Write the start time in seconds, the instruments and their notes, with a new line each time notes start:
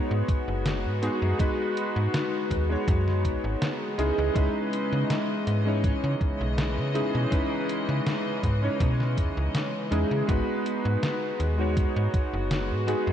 Already playing: electric grand piano G#3 B3 D#4 F#4 C#5, string section G#3 B3 F#4
0.11 fm bass G#2
0.28 kick, closed hi-hat
0.48 fm bass F#1
0.66 snare, closed hi-hat
0.85 fm bass G#2
1.02 electric grand piano G#3 B3 D#4 F#4 G#4, closed hi-hat
1.22 fm bass F#2
1.38 electric grand piano G#3 B3 D#4 F#4 B4, kick, closed hi-hat
1.77 closed hi-hat
1.96 fm bass G#2
2.14 snare, closed hi-hat
2.51 fm bass D#2, kick, closed hi-hat
2.69 electric grand piano G#3 B3 D#4 F#4 C#5
2.87 fm bass F#2, kick, closed hi-hat
3.07 snare
3.24 fm bass B1, kick, closed hi-hat
3.44 fm bass G#1
3.62 snare, closed hi-hat
3.98 fm bass C#2, string section C#3 E3 D#5, electric grand piano G#3 C#4 D#4 E4 G#4, closed hi-hat
4.18 fm bass C#2
4.34 fm bass C#2, electric grand piano G#3 C#4 D#4 E4 B4, kick, closed hi-hat
4.73 closed hi-hat
4.92 fm bass C#3
5.10 snare, closed hi-hat
5.47 fm bass G#2, closed hi-hat
5.65 electric grand piano G#3 C#4 D#4 E4 C#5
5.84 kick, closed hi-hat
6.04 fm bass C#3
6.21 kick, closed hi-hat
6.41 fm bass B1
6.58 snare, closed hi-hat
6.78 fm bass C#3
6.94 electric grand piano G#3 C#4 D#4 E4 G#4, closed hi-hat
7.15 fm bass B2
7.30 electric grand piano G#3 C#4 D#4 E4 B4, kick, closed hi-hat
7.69 closed hi-hat
7.89 fm bass C#3
8.06 snare, closed hi-hat
8.43 fm bass G#2, kick, closed hi-hat
8.62 electric grand piano G#3 C#4 D#4 E4 C#5
8.80 fm bass B2, kick, closed hi-hat
9.00 snare
9.17 fm bass E2, kick, closed hi-hat
9.37 fm bass C#2
9.55 snare, closed hi-hat
9.91 fm bass E2, electric grand piano G#3 C#4 D#4 E4 G#4, closed hi-hat
10.11 fm bass C#3
10.27 fm bass G#1, electric grand piano G#3 B3 D#4 F#4 B4, string section B3 F#4, kick, closed hi-hat
10.66 closed hi-hat
10.85 fm bass G#2
11.03 snare, closed hi-hat
11.40 fm bass D#2, closed hi-hat
11.57 electric grand piano G#3 B3 D#4 F#4 C#5
11.77 kick, closed hi-hat
11.96 fm bass G#2
12.14 kick, closed hi-hat
12.33 fm bass F#1
12.51 snare, closed hi-hat
12.70 fm bass G#2
12.87 electric grand piano G#3 B3 D#4 F#4 G#4, closed hi-hat
13.07 fm bass F#2